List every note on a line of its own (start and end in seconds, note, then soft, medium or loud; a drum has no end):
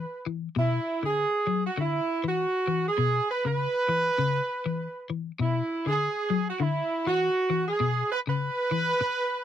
0.00 0.24 B4 loud
0.26 0.48 E3 medium
0.56 0.78 B2 loud
0.56 1.02 E4 medium
1.03 1.25 D3 medium
1.03 1.61 G#4 medium
1.47 1.68 F#3 medium
1.66 1.78 F#4 medium
1.77 1.99 D3 medium
1.77 2.23 E4 medium
2.24 2.45 E3 medium
2.24 2.86 F#4 loud
2.67 2.89 E3 medium
2.88 3.27 G#4 loud
2.98 3.19 B2 medium
3.31 3.45 B4 loud
3.45 3.66 C#3 medium
3.45 5.06 B4 loud
3.89 4.10 E3 medium
4.18 4.40 C#3 medium
4.66 4.87 E3 medium
5.10 5.31 E3 medium
5.39 5.61 B2 loud
5.39 5.84 E4 medium
5.86 6.07 D3 medium
5.86 6.43 G#4 medium
6.30 6.51 F#3 medium
6.49 6.61 F#4 medium
6.60 6.81 D3 medium
6.60 7.07 E4 medium
7.07 7.28 E3 medium
7.07 7.63 F#4 loud
7.50 7.71 E3 medium
7.68 8.11 G#4 loud
7.80 8.02 B2 medium
8.12 8.19 B4 loud
8.27 8.49 C#3 medium
8.27 9.44 B4 loud
8.71 8.92 E3 medium
9.01 muted clean electric guitar stroke medium